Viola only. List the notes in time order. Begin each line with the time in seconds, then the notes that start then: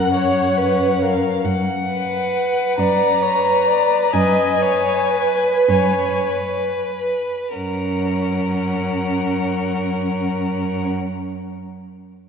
0.14 C#5
0.57 B4
1.02 A#4
2.79 D5
3.22 C#5
3.68 D5
4.15 D#5
4.63 C#5
5.14 B4
5.69 C#5
7.55 C#4